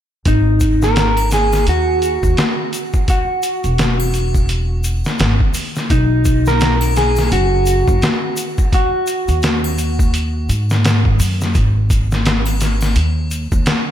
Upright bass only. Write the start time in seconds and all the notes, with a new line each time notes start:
0.26 G#1
1.67 D#2
2.23 D#2
3.64 E1
5.20 G#1
5.90 B1
7.31 F#1
7.88 F#1
9.28 D#2
10.49 G#2
11.20 F#2
11.55 G#1
12.96 D#2
13.52 D#2